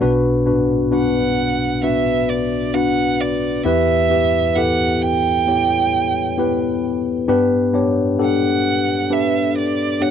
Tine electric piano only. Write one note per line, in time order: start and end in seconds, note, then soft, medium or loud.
0.01 3.61 B1 medium
0.01 3.61 B2 medium
0.01 0.44 B3 medium
0.01 0.44 D4 loud
0.01 0.45 F#4 loud
0.01 0.45 B4 loud
0.46 0.90 B3 medium
0.46 0.90 D4 medium
0.46 0.90 F#4 medium
0.46 0.90 B4 medium
0.91 1.78 B3 medium
0.91 1.78 D4 medium
0.91 1.78 F#4 medium
0.91 1.79 B4 medium
1.83 2.69 B3 medium
1.83 2.70 D4 medium
1.83 2.70 F#4 medium
1.83 2.70 B4 medium
2.74 3.60 B3 medium
2.74 3.61 D4 medium
2.74 3.61 F#4 medium
2.74 3.61 B4 medium
3.65 7.25 E2 medium
3.65 7.25 E3 medium
3.65 4.08 B3 medium
3.65 4.08 E4 medium
3.65 4.08 G4 medium
3.65 4.09 B4 loud
4.10 4.53 B3 medium
4.10 4.53 E4 medium
4.10 4.54 G4 medium
4.10 4.54 B4 medium
4.56 5.42 B3 medium
4.56 5.42 E4 medium
4.56 5.43 G4 medium
4.56 5.43 A4 medium
5.47 6.33 B3 medium
5.47 6.34 E4 medium
5.47 6.34 G4 medium
5.47 6.34 C#5 medium
6.37 7.24 B3 medium
6.37 7.24 E4 medium
6.37 7.24 G4 medium
6.37 7.25 B4 loud
7.28 10.11 G2 medium
7.28 7.71 B3 loud
7.28 7.72 D4 loud
7.28 7.72 G4 loud
7.28 7.72 B4 loud
7.73 8.17 B3 medium
7.73 8.17 D4 medium
7.73 8.17 G4 medium
7.73 8.18 C#5 medium
8.19 9.06 B3 medium
8.19 9.05 D4 medium
8.19 9.06 G4 medium
8.19 9.06 A4 medium
9.10 9.97 B3 medium
9.10 9.97 D4 medium
9.10 9.97 G4 medium
9.10 9.97 B4 medium
10.00 10.11 B3 medium
10.00 10.11 D4 medium
10.00 10.11 G4 medium
10.00 10.11 C#5 medium